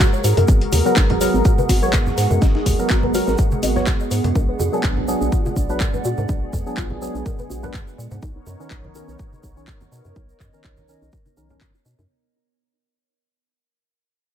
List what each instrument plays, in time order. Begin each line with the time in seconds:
Already playing: analog synth pad G#3 G#4 A#4 F#5, ambient pad G#4 A#4 F#5
0.00 synth arpeggio sound F#4, kick, snare, clap, high conga, low conga, shaker
0.13 synth arpeggio sound C#5, shaker
0.24 fm bass G#2, analog synth pad B3 F#4, ambient pad B3, synth arpeggio sound F#4, open hi-hat, shaker
0.37 fm bass F#2, synth arpeggio sound A#4, closed hi-hat, high conga, shaker
0.48 fm bass G#1, kick, shaker
0.61 closed hi-hat
0.72 fm bass D#2, open hi-hat, high conga, shaker
0.85 synth stab F#3 B3 A#4, shaker
0.96 fm bass G#1, synth arpeggio sound D#4, kick, snare, clap, shaker
1.10 synth arpeggio sound D#4, closed hi-hat, high conga, low conga
1.21 synth stab F#3 B3 A#4, open hi-hat, shaker
1.34 fm bass G#1, shaker
1.45 synth arpeggio sound F#4, kick, shaker
1.58 synth arpeggio sound B4, high conga, shaker
1.69 fm bass G#1, synth arpeggio sound F#4, kick, snare, open hi-hat, shaker
1.82 synth stab F#3 B3 C#5, synth arpeggio sound A#4, shaker
1.93 kick, snare, clap, high conga, shaker
2.06 snare, low conga, shaker
2.18 fm bass G#2, snare, open hi-hat, shaker
2.30 fm bass F#2, high conga, shaker
2.42 fm bass G#1, synth arpeggio sound D#4, kick, snare, shaker
2.55 synth arpeggio sound D#4, snare
2.66 fm bass D#2, kick, open hi-hat, high conga, shaker
2.79 synth stab F#3 B3 A#4, shaker
2.90 fm bass G#1, synth arpeggio sound F#4, kick, snare, clap, shaker
3.03 synth arpeggio sound B4, high conga, low conga
3.14 synth stab F#3 B3 A#4, synth arpeggio sound F#4, open hi-hat, shaker
3.27 fm bass G#1, synth arpeggio sound A#4, snare, shaker
3.38 kick, shaker
3.51 high conga, shaker
3.63 fm bass G#1, synth arpeggio sound D#5, open hi-hat, shaker
3.76 synth stab F#3 B3 C#5, synth arpeggio sound B4, snare, low conga, shaker
3.87 synth arpeggio sound F#4, kick, snare, clap, high conga, low conga, shaker
4.00 shaker
4.11 fm bass G#2, open hi-hat, shaker
4.24 fm bass F#2, closed hi-hat, high conga, shaker
4.35 fm bass A#1, analog synth pad B3 D4, synth arpeggio sound A#4, kick, shaker
4.49 synth arpeggio sound B4
4.59 fm bass F2, synth arpeggio sound F#4, ambient pad D5, high conga, shaker
4.72 synth stab F#3 B3 D4 G#4, synth arpeggio sound A#4, shaker
4.83 fm bass A#1, kick, clap, shaker
4.97 high conga, low conga
5.08 synth stab F#3 B3 D4 G#4, shaker
5.21 fm bass A#1, shaker
5.32 synth arpeggio sound F4, kick, shaker
5.45 synth arpeggio sound F4, high conga, shaker
5.56 fm bass A#1, kick, shaker
5.69 synth stab F#3 B3 D4 B4, shaker
5.80 synth arpeggio sound A#4, kick, clap, high conga, shaker
5.94 synth arpeggio sound B4, low conga, shaker
6.05 fm bass A#2, synth arpeggio sound F#4, shaker
6.18 fm bass G#2, synth arpeggio sound A#4, high conga, shaker
6.29 fm bass A#1, analog synth pad G#4, kick, shaker
6.53 fm bass F2, kick, high conga, shaker
6.66 synth stab F#3 B3 D4 G#4, shaker
6.77 fm bass A#1, synth arpeggio sound F4, kick, clap, shaker
6.90 synth arpeggio sound F4, high conga, low conga
7.01 synth stab F#3 B3 D4 G#4, shaker
7.15 fm bass A#1, shaker
7.26 synth arpeggio sound A#4, kick, shaker
7.39 synth arpeggio sound B4, high conga, shaker
7.50 fm bass A#1, synth arpeggio sound F#4, shaker
7.63 synth stab F#3 B3 D4 B4, synth arpeggio sound A#4, low conga, shaker
7.74 kick, clap, high conga, low conga, shaker
7.87 shaker
7.98 fm bass A#2, shaker
8.11 fm bass G#2, high conga, shaker
8.22 fm bass B1, analog synth pad B3 D#4 A#4 C#5, synth arpeggio sound D#4, kick, shaker
8.36 synth arpeggio sound D#4
8.46 fm bass F#2, high conga, shaker
8.60 synth stab D#3 C#4 A#4, shaker
8.71 fm bass B1, synth arpeggio sound B4, kick, clap, shaker
8.83 ambient pad A#4, synth arpeggio sound C#5, high conga, low conga
8.95 synth stab D#3 C#4 A#4, synth arpeggio sound F#4, shaker
9.08 fm bass B1, synth arpeggio sound B4, shaker
9.19 kick, shaker
9.33 ambient pad C#5, high conga, shaker
9.43 fm bass B1, kick, shaker
9.54 synth stab D#3 C#4 C#5, ambient pad D#5, shaker
9.67 synth arpeggio sound D#4, kick, clap, high conga, shaker
9.81 synth arpeggio sound D#4, low conga, shaker
9.92 fm bass B2, shaker
10.05 fm bass F#2, high conga, shaker
10.16 fm bass B1, synth arpeggio sound B4, kick, shaker
10.29 synth arpeggio sound C#5, shaker
10.40 fm bass F#2, synth arpeggio sound F#4, kick, clap, high conga, shaker
10.53 synth stab D#3 C#4 A#4, synth arpeggio sound B4, shaker
10.64 fm bass B1, kick, clap, shaker
10.77 high conga, low conga, shaker
10.88 synth stab D#3 C#4 A#4, shaker
11.02 fm bass B1, shaker
11.12 synth arpeggio sound D#4, kick, shaker
11.26 synth arpeggio sound D#4, high conga, shaker
11.37 fm bass B1, synth stab D#3 C#4 A#4, synth arpeggio sound F#5, shaker
11.50 synth stab D#3 C#4 A#4, low conga, shaker
11.61 synth arpeggio sound D#4, kick, clap, high conga, low conga, shaker
11.74 synth arpeggio sound D#4, shaker
11.86 fm bass B2, synth arpeggio sound D#4, shaker
11.99 fm bass F#2, synth arpeggio sound D#4, high conga, shaker